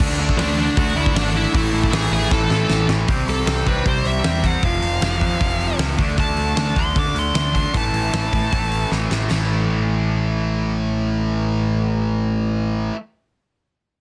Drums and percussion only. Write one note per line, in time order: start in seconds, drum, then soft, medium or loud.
0.29 kick medium
0.39 snare loud
0.39 open hi-hat medium
0.77 kick loud
0.77 open hi-hat medium
1.06 kick medium
1.16 snare loud
1.16 open hi-hat medium
1.55 kick loud
1.55 open hi-hat medium
1.83 kick medium
1.93 snare loud
1.93 open hi-hat medium
2.31 kick loud
2.31 snare medium
2.50 snare medium
2.70 snare loud
2.89 snare loud
3.08 kick loud
3.08 open hi-hat medium
3.28 open hi-hat medium
3.47 snare loud
3.47 open hi-hat medium
3.67 kick medium
3.67 open hi-hat soft
3.86 kick loud
3.86 open hi-hat medium
4.05 open hi-hat soft
4.24 snare loud
4.24 open hi-hat medium
4.44 kick medium
4.44 open hi-hat medium
4.63 kick loud
4.63 open hi-hat medium
4.82 open hi-hat medium
5.02 snare medium
5.02 open hi-hat medium
5.21 kick medium
5.21 open hi-hat medium
5.41 kick loud
5.41 open hi-hat medium
5.61 open hi-hat soft
5.79 snare loud
5.79 open hi-hat medium
5.98 kick medium
5.98 open hi-hat medium
6.18 kick loud
6.18 open hi-hat medium
6.37 open hi-hat soft
6.57 snare loud
6.57 open hi-hat medium
6.76 kick medium
6.76 open hi-hat soft
6.96 kick loud
6.96 open hi-hat medium
7.16 open hi-hat soft
7.35 snare loud
7.35 open hi-hat medium
7.55 kick medium
7.55 open hi-hat medium
7.74 kick loud
7.74 open hi-hat medium
7.94 open hi-hat medium
8.13 snare loud
8.13 open hi-hat medium
8.33 kick medium
8.33 open hi-hat medium
8.52 kick loud
8.52 open hi-hat medium
8.72 open hi-hat soft
8.92 snare medium
9.11 snare medium
9.31 snare medium
9.31 splash medium